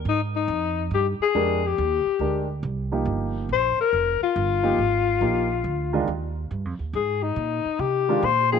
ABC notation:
X:1
M:4/4
L:1/8
Q:"Swing" 1/4=140
K:Ablyd
V:1 name="Alto saxophone"
E E3 G A2 G- | G3 z4 z | c B2 F4- F- | F6 z2 |
A E3 G2 c A |]
V:2 name="Grand piano"
z6 [A,DGB] z | z2 [A,DGB] z2 [F,B,EG]3 | z4 z [F,B,EG] z2 | [F,B,EG] z2 [E,A,DF] z4 |
z4 z [E,A,DF] z [F,B,Eg] |]
V:3 name="Upright bass" clef=bass
A,,2 F,,2 G,, z F,,2 | E,, z D,,2 C,,2 G,,,2 | B,,, z F,,, z G,,,2 A,,,2 | B,,,2 D,,2 E,,2 (3G,, F,, E,, |
A,,2 B,, z C,2 B,,2 |]